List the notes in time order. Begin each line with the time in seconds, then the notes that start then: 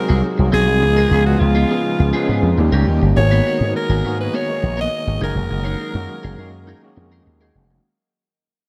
Already playing: C3 F#3 G#3 C4 D#4 F#4 G#4 A#4
0.09 C2 C4 F#4 G#4
0.38 C2 F#3 G#3 C4 D#4 G#4, muted clean electric guitar stroke
0.52 B1 C4 F#4 G#4
0.68 C2, muted clean electric guitar stroke
0.82 C#2 C#3 F3 G#3 B3 C#4 D#4 F4 G#4, muted clean electric guitar stroke
0.97 B3 F4 A#4
1.11 C#2 B3 F4 G#4
1.25 F3 G#3 B3 C#4 F#4 G#4, muted clean electric guitar stroke
1.39 C#2 F4, muted clean electric guitar stroke
1.55 B3 F4 G#4
1.69 F3 G#3 B3 C#4 F4 G#4
1.84 muted clean electric guitar stroke
1.99 C#2, muted clean electric guitar stroke
2.13 F3 G#3 B3 C#4 F4 G#4
2.28 G#2 B3 F4 G#4 F#5
2.43 F2, muted clean electric guitar stroke
2.58 D#2 D#3 G3 A#3 C#4 F4 G4 F5, muted clean electric guitar stroke
2.72 C#2 D#3 G3 A#3 C#4 G4 A#4
2.87 D#2 D#5, muted clean electric guitar stroke
3.02 G1, muted clean electric guitar stroke
3.16 G#1 D#3 G#3 A#3 B3 D#4 F#4 G#4 A#4 C#5, muted clean electric guitar stroke
3.31 B3 F#4 B4
3.46 B3 F#4 A#4
3.61 G#2 D#3 G#3 A#3 B3 G#4, muted clean electric guitar stroke
3.75 A#4, muted clean electric guitar stroke
3.89 G#1 B3 F#4 A#4
4.04 G#2 D#3 G#3 A#3 B3 F#4 A#4
4.19 B4, muted clean electric guitar stroke
4.34 B3 F#4 A#4 C#5
4.49 D#3 G#3 A#3 B3 F#4
4.62 A#1, muted clean electric guitar stroke
4.77 B3 F#4 A#4 D#5
5.07 G#1 D#3 G#3 A#3 B3 F#4, muted clean electric guitar stroke
5.21 F#1 D#3 F#3 G#3 A#3 C#4 D#4 F#4 G#4 A#4
5.36 F1, muted clean electric guitar stroke
5.51 F#1, muted clean electric guitar stroke
5.64 D#4 G#4 C#5
5.79 D#4 G#4 A#4
5.94 F#2 D#3 G#3 A#3 C#4 F#4, muted clean electric guitar stroke
6.08 muted clean electric guitar stroke
6.23 F#1 D#4 G#4 A#4
6.38 F#2 D#3 G#3 A#3 C#4 D#4 F#4 G#4 A#4
6.53 muted clean electric guitar stroke
6.67 D#4 G#4 A#4
6.83 D#3 G#3 A#3 C#4 F#4, muted clean electric guitar stroke
6.97 F2, muted clean electric guitar stroke
7.12 D#4 G#4 A#4
7.26 D#2, muted clean electric guitar stroke
7.41 D#3 G#3 A#3 C#4 D#4 F#4 G#4 A#4
7.55 F1, muted clean electric guitar stroke
7.71 muted clean electric guitar stroke